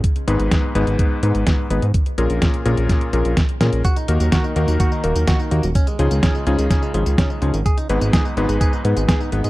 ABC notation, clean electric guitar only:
X:1
M:4/4
L:1/16
Q:1/4=126
K:Abdor
V:1 name="Clean electric guitar"
z16 | z16 | G E B, G, G E B, G, G E B, G, G E B, G, | D A, F, E, D A, F, E, D A, F, E, D A, F, E, |
A E C A, A E C A, A E C A, A E C A, |]